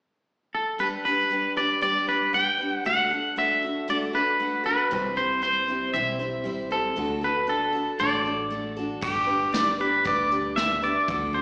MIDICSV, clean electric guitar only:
0, 0, Header, 1, 2, 480
1, 0, Start_track
1, 0, Key_signature, 1, "major"
1, 0, Tempo, 514139
1, 746, Time_signature, 4, 2, 24, 8
1, 10660, End_track
2, 0, Start_track
2, 0, Title_t, "Clean electric guitar"
2, 0, Program_c, 0, 27
2, 509, Note_on_c, 0, 69, 69
2, 746, Note_on_c, 0, 71, 74
2, 755, Note_off_c, 0, 69, 0
2, 811, Note_off_c, 0, 71, 0
2, 981, Note_on_c, 0, 71, 73
2, 1466, Note_off_c, 0, 71, 0
2, 1469, Note_on_c, 0, 74, 86
2, 1693, Note_off_c, 0, 74, 0
2, 1704, Note_on_c, 0, 74, 91
2, 1929, Note_off_c, 0, 74, 0
2, 1947, Note_on_c, 0, 71, 68
2, 2184, Note_off_c, 0, 71, 0
2, 2187, Note_on_c, 0, 79, 96
2, 2551, Note_off_c, 0, 79, 0
2, 2551, Note_on_c, 0, 78, 96
2, 2669, Note_off_c, 0, 78, 0
2, 2672, Note_on_c, 0, 78, 82
2, 3157, Note_off_c, 0, 78, 0
2, 3161, Note_on_c, 0, 76, 86
2, 3637, Note_off_c, 0, 76, 0
2, 3640, Note_on_c, 0, 74, 80
2, 3704, Note_off_c, 0, 74, 0
2, 3873, Note_on_c, 0, 71, 76
2, 4337, Note_off_c, 0, 71, 0
2, 4348, Note_on_c, 0, 71, 74
2, 4827, Note_on_c, 0, 72, 75
2, 4844, Note_off_c, 0, 71, 0
2, 5058, Note_off_c, 0, 72, 0
2, 5069, Note_on_c, 0, 72, 72
2, 5538, Note_off_c, 0, 72, 0
2, 5541, Note_on_c, 0, 76, 75
2, 6273, Note_on_c, 0, 69, 75
2, 6287, Note_off_c, 0, 76, 0
2, 6759, Note_off_c, 0, 69, 0
2, 6763, Note_on_c, 0, 71, 76
2, 6993, Note_off_c, 0, 71, 0
2, 6996, Note_on_c, 0, 69, 74
2, 7466, Note_on_c, 0, 74, 75
2, 7486, Note_off_c, 0, 69, 0
2, 8149, Note_off_c, 0, 74, 0
2, 10660, End_track
0, 0, End_of_file